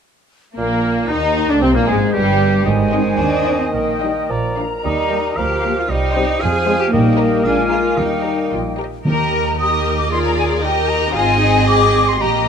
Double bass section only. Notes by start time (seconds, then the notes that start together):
0.57 A#1
1.11 D#2
1.50 D2
1.63 C2
1.76 A#1
1.89 G#1
2.15 G1
2.66 G#1
3.19 D#2
3.74 A#1
4.30 A#1
4.85 D#2
5.38 D2
5.90 C2
6.42 F2
6.94 A#1
7.45 A#1
7.98 D#2
8.52 A#1
9.07 D#2
11.15 G#1
12.21 A#1